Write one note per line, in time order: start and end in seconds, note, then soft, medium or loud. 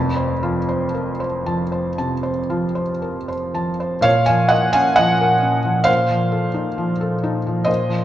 0.00 1.94 F1 medium
0.00 1.95 F2 medium
0.00 0.32 A5 medium
0.16 0.58 C5 soft
0.43 1.26 F3 soft
0.43 0.84 F4 medium
0.69 1.10 C5 medium
0.94 1.20 A#4 soft
1.20 1.62 C5 medium
1.46 2.29 F3 soft
1.46 1.88 A5 medium
1.72 2.13 C5 soft
1.98 2.81 C3 soft
1.98 2.40 A5 medium
2.23 2.65 C5 soft
2.50 3.33 F3 soft
2.50 2.91 F4 soft
2.75 3.17 C5 soft
3.02 3.28 A#4 soft
3.28 3.70 C5 soft
3.54 4.05 F3 soft
3.54 3.95 A5 medium
3.80 4.05 C5 soft
4.01 5.82 A#2 medium
4.01 4.26 C#5 medium
4.01 4.26 F5 loud
4.26 4.66 F3 soft
4.26 4.50 F5 medium
4.26 4.51 G#5 medium
4.49 4.89 A#4 medium
4.49 4.72 D#5 medium
4.49 4.73 F#5 medium
4.73 5.11 C#4 medium
4.73 4.96 F5 medium
4.73 4.97 G#5 loud
4.96 5.34 F3 medium
4.96 5.83 D#5 medium
4.96 5.86 F#5 loud
5.21 5.56 A#4 medium
5.43 5.78 C#4 medium
5.65 5.87 F3 soft
5.84 7.64 A#2 medium
5.84 7.63 C5 medium
5.84 7.67 F5 loud
6.10 6.46 F3 soft
6.32 6.68 A4 soft
6.54 6.91 D#4 soft
6.78 7.14 F3 soft
7.01 7.37 A4 soft
7.24 7.59 D#4 medium
7.47 7.69 F3 soft
7.65 8.04 A#2 medium
7.65 8.04 C5 medium
7.65 8.04 D#5 medium
7.89 8.04 F3 soft